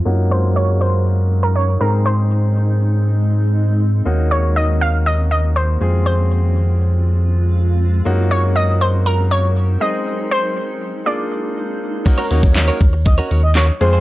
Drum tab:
CC |----------------|----------------|----------------|----------------|
HH |----------------|----------------|----------------|----------------|
CP |----------------|----------------|----------------|----------------|
SD |----------------|----------------|----------------|----------------|
BD |----------------|----------------|----------------|----------------|

CC |----------------|----------------|x---------------|
HH |----------------|----------------|x-x-xxx-x-x-x-x-|
CP |----------------|----------------|----x-------x---|
SD |----------------|----------------|----o-------o---|
BD |----------------|----------------|o--o--o-o-------|